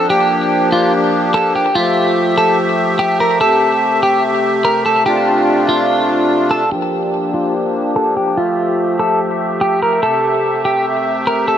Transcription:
0.00 1.72 F3 medium
0.00 1.72 D4 medium
0.10 1.74 A#3 medium
0.10 5.02 G4 medium
0.10 0.68 G4 loud
0.72 0.92 F4 medium
1.34 1.54 A4 medium
1.56 1.75 G4 medium
1.75 3.39 F3 medium
1.75 3.39 A3 medium
1.75 2.34 F4 loud
1.75 5.03 E5 medium
2.38 2.57 A4 medium
2.99 3.19 G4 loud
3.20 3.40 A#4 medium
3.41 5.05 C3 medium
3.41 6.69 A3 medium
3.41 3.99 A4 loud
4.03 4.23 G4 medium
4.65 4.85 A#4 medium
4.86 5.05 A4 medium
5.06 6.70 C3 medium
5.06 6.70 D4 medium
5.06 6.70 F4 medium
5.06 5.65 G4 loud
5.69 6.47 F4 medium
6.51 6.71 A4 medium
6.72 10.00 F3 medium
6.72 8.36 A#3 medium
6.72 8.36 D4 medium
6.72 7.30 G4 loud
6.72 11.58 G4 medium
7.34 7.54 F4 medium
7.96 8.16 A4 medium
8.17 8.36 G4 medium
8.37 11.58 A3 medium
8.37 8.96 F4 loud
8.37 11.58 E5 medium
8.99 9.19 A4 medium
9.61 9.81 G4 medium
9.82 10.02 A#4 medium
10.03 11.58 C3 medium
10.03 10.61 A4 loud
10.65 10.85 G4 medium
11.27 11.47 A#4 medium
11.48 11.58 A4 medium

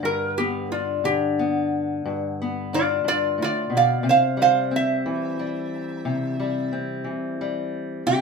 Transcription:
0.00 2.04 G2 medium
0.00 1.03 D3 medium
0.05 0.37 A#4 medium
0.38 1.38 B3 medium
0.38 0.70 G4 medium
0.72 2.72 D4 soft
0.72 1.04 F4 medium
1.04 4.06 D3 medium
1.04 1.38 G4 medium
1.39 2.39 B3 medium
2.05 3.03 G2 medium
2.42 4.04 B3 medium
2.73 4.03 D4 medium
2.73 3.07 F4 medium
2.73 3.06 D5 medium
3.04 3.39 G2 medium
3.04 3.38 F4 medium
3.08 3.40 D5 medium
3.38 3.69 A2 medium
3.42 3.72 F4 medium
3.42 3.74 D5 medium
3.70 4.03 B2 medium
3.77 4.06 D5 medium
3.77 4.08 F5 medium
4.03 5.05 C3 medium
4.09 4.39 C5 medium
4.09 4.41 F5 medium
4.37 5.39 G3 medium
4.42 4.72 C5 medium
4.42 4.74 F5 medium
4.71 6.71 C4 medium
4.76 6.72 E5 medium
5.06 7.03 E3 medium
5.39 6.39 G3 medium
6.05 7.07 C3 medium
6.40 7.41 G3 medium
6.73 8.03 C4 medium
7.04 8.03 E3 medium
7.41 8.21 G3 medium
8.07 8.21 C3 medium
8.07 8.21 G4 medium

